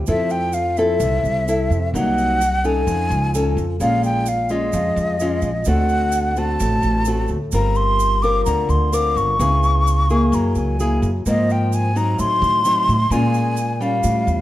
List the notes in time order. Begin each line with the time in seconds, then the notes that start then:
0.06 F2 F3 C4 E4 A4 E5, shaker
0.30 G5, shaker
0.53 F5, shaker
0.77 C4 E4 A4 E5, shaker
1.00 C2 C3, shaker
1.23 C2, shaker
1.48 C4 E4 A4, shaker
1.70 F2, shaker
1.94 C2 C3 F#3 A#3 D#4 F#5, shaker
2.18 shaker
2.41 shaker
2.64 C#4 D#4 A4 G#5, shaker
2.87 F2 F3, shaker
3.10 C#2, shaker
3.34 C#4 D#4 A4, shaker
3.57 F2, shaker
3.80 A#1 A#2 G#3 C#4 F4 F5, shaker
4.04 G5, shaker
4.26 F5, shaker
4.49 G#3 C#4 F4 D#5, shaker
4.73 F2 F3, shaker
4.96 F2, shaker
5.20 G#3 C#4 F4, shaker
5.42 A#1, shaker
5.65 D2 D3 A3 C4 F#4 F#5, shaker
5.89 shaker
6.12 shaker
6.36 A3 C4 F#4 A5, shaker
6.60 A1 A2, shaker
6.82 A1, shaker
7.05 A3 C4 F#4, shaker
7.28 D2, shaker
7.52 G1 G3 C4 F4 A#4 A#5, shaker
7.75 C6, shaker
8.00 shaker
8.22 C4 F4 A#4 D6, shaker
8.45 D2 D3 A#5, shaker
8.69 D2 C6, shaker
8.92 C4 F4 A#4 D6, shaker
9.16 G1 C#6, shaker
9.39 C#2 C#3 B3 E4 G#4, shaker
9.63 shaker
9.87 shaker
10.10 A#3 E4 G#4, shaker
10.32 F#2 F#3 A#5, shaker
10.55 C#2 G#5, shaker
10.80 A#3 E4 G#4, shaker
11.02 F#2, shaker
11.26 G#2 F3 A#3 C4 D#5, shaker
11.50 G5, shaker
11.73 G#5, shaker
11.95 F#3 C4 D#4 A#5, shaker
12.18 A2 C6, shaker
12.42 D#3, shaker
12.65 F#3 C4 D#4, shaker
12.88 A2, shaker
13.10 A#2 G#3 C#4 F4 G#5, shaker
13.34 shaker
13.57 shaker
13.80 G3 C#4 F4 F5, shaker
14.03 A2, shaker
14.27 E2, shaker